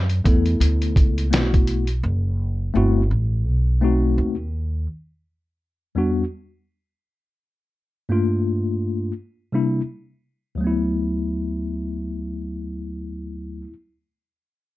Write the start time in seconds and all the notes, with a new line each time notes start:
Already playing: F#2
0.09 closed hi-hat
0.24 E2 A3 B3 E4 A4, kick, closed hi-hat
0.46 closed hi-hat
0.60 D2, closed hi-hat
0.82 closed hi-hat
0.96 C#2, kick, closed hi-hat
1.18 closed hi-hat
1.31 B1 A3 B3 E4 F4, snare, closed hi-hat
1.40 F#4
1.54 kick, closed hi-hat
1.67 closed hi-hat
1.87 closed hi-hat
2.03 F#1
2.74 G1 A3 C4 E4 F#4
3.11 A1
3.46 B1
3.81 A3 C4 D#4 F#4
4.18 D#2
5.95 E2 G3 B3 D4 F#4
8.09 G2 A3 A#3 D4 F4
9.52 C3 G3 A#3 D4 E4
10.55 D2 F#3
10.61 A3 B3
10.67 E4